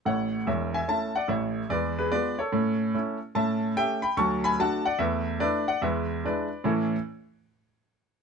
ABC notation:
X:1
M:4/4
L:1/8
Q:"Swing" 1/4=146
K:A
V:1 name="Grand piano"
[cf]2 [ce] [eg] [ea] [df] [ce]2 | [Bd] [GB] [Bd] [Ac]4 z | [ea]2 [e=g] [gb] [ac'] [^gb] [fa] [df] | [Be]2 [Bd] [df] [Be]2 [Bd]2 |
[A,,E,CEAc] z6 z |]
V:2 name="Grand piano"
[A,,,A,,]2 [E,,,E,,]2 [A,CE]2 [A,,,A,,]2 | [E,,G,]2 [G,B,=F]2 [A,,C]2 [A,CE]2 | [A,,C]2 [A,C=G]2 [D,,F,]2 [A,DF]2 | [E,,A,]2 [A,DE]2 [E,,G,]2 [G,DE]2 |
z8 |]